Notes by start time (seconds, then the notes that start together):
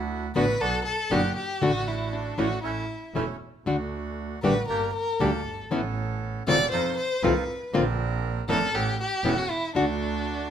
Already playing: D2 D4 E4 F#4
0.35 A1 B2 D3 B3 D4 E4 F#4 B4
0.60 B1 B3 D4 F#4 A4
0.85 A4
1.11 F#1 B2 D3 B3 D4 F#4 G4
1.37 G4
1.61 A1 D3 A3 D4 F#4
1.88 E4
2.13 D4
2.38 A1 E3 A3 C#4 D4 E4 F#4
2.63 A1 A3 C#4 E4
3.15 E1 E3 A3 C#4 E4
3.66 D2 D3 A3 D4 F#4
4.43 A1 D3 G3 A3 A#3 D4 F#4 G4 B4
4.68 G1 A#3 D4 G4 A#4
4.94 A#4
5.20 D2 D3 G3 A#3 D4 G4 A4
5.46 G1
5.71 A1 E3 B3 C#4 E4 A4
6.47 E1 C3 D#3 A3 B3 C4 C#4 F4 A4 D5
6.71 F2 D#4 F4 A4 C5
6.98 C5
7.23 C2 C3 D#3 A3 C4 D#4 F4 A4 B4
7.73 A#1 D3 A#3 C4 D4 F4 A#4
8.48 F1 E3 B3 C4 C#4 D4 E4 A4 A#4
8.73 A1 B3 C#4 G4 A4
9.00 G4
9.24 E1 E3 B3 C#4 E4 A4
9.38 F#4
9.51 E4
9.74 D2 D3 A3 D4 F#4